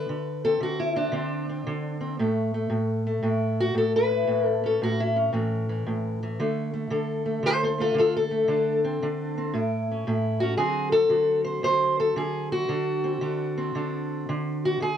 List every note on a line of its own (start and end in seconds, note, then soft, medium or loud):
0.00 0.44 B4 loud
0.09 0.59 D3 medium
0.45 0.94 C4 soft
0.45 0.61 A4 medium
0.60 1.11 D3 medium
0.60 0.79 F#4 medium
0.80 0.96 E4 medium
0.95 1.11 C4 soft
0.95 2.19 D4 medium
1.12 1.65 D3 medium
1.12 1.48 C4 medium
1.49 2.00 C4 soft
1.67 2.17 D3 medium
2.01 2.16 C4 soft
2.19 2.69 A2 medium
2.19 2.54 A3 soft
2.54 3.06 A3 soft
2.70 3.22 A2 medium
3.07 4.63 A3 soft
3.23 3.73 A2 medium
3.23 4.10 E4 soft
3.60 3.77 F#4 loud
3.75 4.26 A2 medium
3.75 3.95 A4 medium
3.96 4.47 B4 loud
4.11 4.26 E4 soft
4.27 4.81 A2 medium
4.27 4.98 E4 medium
4.47 4.65 A4 loud
4.64 5.15 C#4 soft
4.64 4.82 A4 medium
4.82 5.31 A2 medium
4.82 5.00 F#4 loud
5.00 5.17 E4 medium
5.16 6.37 C#4 soft
5.33 5.85 A2 medium
5.33 5.68 E3 medium
5.69 6.22 E3 soft
5.87 6.37 A2 medium
6.23 6.40 E3 soft
6.39 6.89 D3 medium
6.39 6.73 A3 soft
6.73 7.25 A3 soft
6.90 7.41 D3 medium
6.90 7.45 A4 medium
7.26 7.78 A3 soft
7.43 7.93 D3 medium
7.43 7.50 A4 medium
7.43 7.63 C5 loud
7.63 7.74 A4 medium
7.63 7.80 C5 medium
7.78 8.31 A3 medium
7.78 7.97 F4 medium
7.78 7.98 A4 loud
7.94 8.46 D3 medium
7.94 8.15 F4 medium
7.99 8.15 A4 loud
8.17 9.73 A4 loud
8.31 8.84 A3 soft
8.48 9.01 D3 medium
8.48 9.01 D4 medium
8.84 9.36 C4 soft
9.02 9.52 D3 medium
9.02 9.53 D4 medium
9.38 9.53 C4 soft
9.54 10.06 A2 medium
9.54 10.07 E4 medium
9.92 10.42 C#4 soft
10.07 10.57 A2 medium
10.07 10.58 E4 medium
10.40 10.58 C#4 soft
10.40 10.57 F#4 medium
10.57 11.09 D3 medium
10.57 13.07 F#3 soft
10.57 12.71 C4 soft
10.57 11.10 F#4 soft
10.57 10.92 G#4 loud
10.92 11.44 A4 medium
11.09 11.62 D3 medium
11.09 12.52 F#4 soft
11.44 11.63 C5 medium
11.63 12.15 D3 medium
11.63 11.99 C5 loud
11.99 12.17 A4 loud
12.16 12.68 D3 medium
12.16 12.51 G#4 medium
12.52 14.63 F#4 medium
12.68 13.21 D3 medium
12.68 13.21 D4 soft
13.04 13.57 C4 soft
13.21 13.75 D3 medium
13.21 13.75 D4 soft
13.58 14.83 C4 soft
13.75 14.28 D3 medium
13.75 14.85 D4 soft
14.29 14.80 D3 medium
14.65 14.82 F#4 medium
14.80 14.97 D3 medium
14.80 14.97 G#4 loud